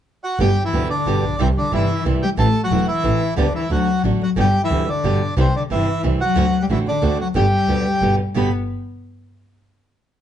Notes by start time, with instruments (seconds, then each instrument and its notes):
0.24 bandoneon F#4 F#5
0.40 double bass G1, nylon-string guitar B2 D3 G3 B3 G4, cello G3, bandoneon G4 G5
0.65 cello E3, bandoneon E4 E5
0.73 double bass D2, nylon-string guitar B2 D3 G3 B3 G4
0.90 cello D3, bandoneon D4 D5
1.06 double bass G1, nylon-string guitar B2 D3 G3 B3 G4
1.23 double bass A#1
1.38 double bass C2, nylon-string guitar C3 E3 G3 C4 E4, cello C3, bandoneon C4 C5
1.57 cello D3, bandoneon D4 D5
1.72 double bass G1, nylon-string guitar C3 E3 G3 C4 E4, cello E3, bandoneon E4 E5
2.05 double bass C2, nylon-string guitar C3 E3 G3 C4 E4
2.22 cello G3, bandoneon G4 G5
2.37 double bass A1, nylon-string guitar E3 A3 C4 E4, cello A3, bandoneon A4 A5
2.63 cello F#3, bandoneon F#4 F#5
2.71 double bass E1, nylon-string guitar E3 A3 C4 E4
2.88 cello E3, bandoneon E4 E5
3.03 double bass A1, nylon-string guitar E3 A3 C4 E4
3.36 double bass D2, nylon-string guitar D3 G3 B3 G4, cello D3, bandoneon D4 D5
3.55 cello E3, bandoneon E4 E5
3.70 double bass D2, nylon-string guitar D3 A3 D4 F#4, cello F#3, bandoneon F#4 F#5
4.04 double bass A1, nylon-string guitar D3 A3 D4 F#4
4.22 cello F#3, bandoneon F#4 F#5
4.36 double bass G1, nylon-string guitar B2 D3 G3 B3 G4, cello G3, bandoneon G4 G5
4.63 cello E3, bandoneon E4 E5
4.70 double bass D2, nylon-string guitar B2 D3 G3 B3 G4
4.89 cello D3, bandoneon D4 D5
5.04 double bass G1, nylon-string guitar B2 D3 G3 B3 G4
5.37 double bass C2, nylon-string guitar C3 E3 G3 C4 E4, cello C3, bandoneon C4 C5
5.55 cello D3, bandoneon D4 D5
5.70 double bass G1, nylon-string guitar C3 E3 G3 C4 E4, cello E3, bandoneon E4 E5
6.03 double bass C2, nylon-string guitar C3 E3 G3 C4 E4
6.21 cello F#3, bandoneon F#4 F#5
6.36 double bass D2, nylon-string guitar D3 A3 C4 F#4
6.62 cello G3, bandoneon G4 G5
6.68 double bass A1, nylon-string guitar D3 A3 C4 F#4, cello E3, bandoneon E4 E5
6.87 cello D3, bandoneon D4 D5
7.02 double bass D2, nylon-string guitar D3 A3 C4 F#4
7.20 cello F#3, bandoneon F#4 F#5
7.35 double bass G1, nylon-string guitar B2 D3 G3 B3 G4, cello G3, bandoneon G4 G5
7.68 double bass D2, nylon-string guitar B2 D3 G3 B3 G4
8.02 double bass G1, nylon-string guitar B2 D3 G3 B3 G4
8.34 double bass G1, nylon-string guitar G2 B2 D3 G3 B3 G4, cello B3, bandoneon B5